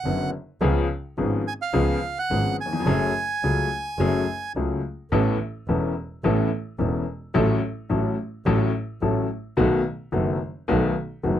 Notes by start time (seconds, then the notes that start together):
Already playing: F#5
0.04 F#1 F#2 D3 B3 C#4 F#4
0.61 C#2 C#3 F3 B3 C#4 G#4
1.17 G#1 G#2 F3 B3 C#4 G#4
1.48 G#5
1.62 F5
1.73 C#2 C#3 F3 B3 C#4 G#4
2.19 F#5
2.30 G#1 G#2 F3 B3 C#4 G#4
2.61 G#5
2.65 D#2
2.73 E2
2.80 F2
2.86 F#1 F#2 F#3 A3 C#4 G#4
3.42 C#2 C#3 F#3 A3 C#4 G#4
3.98 F#1 F#2 F#3 A3 C#4 G#4
4.55 C#2 C#3 F#3 A3 C#4 G#4
5.11 A1 A2 E3 B3 C#4 A4
5.68 E1 E2 E3 B3 C#4 A4
6.24 A1 A2 E3 B3 C#4 A4
6.79 E1 E2 E3 B3 C#4 A4
7.34 A1 A2 F#3 A3 C#4 A4
7.89 A1 A2 F#3 A3 C#4 A4
8.46 A1 A2 F#3 A3 C#4 A4
9.01 A1 A2 F#3 A3 C#4 A4
9.57 B1 B2 D#3 A3 B3 F#4
10.12 F#1 F#2 D#3 A3 B3 F#4
10.68 B1 B2 D#3 A3 B3 F#4
11.23 F#1 F#2 D#3 A3 B3 F#4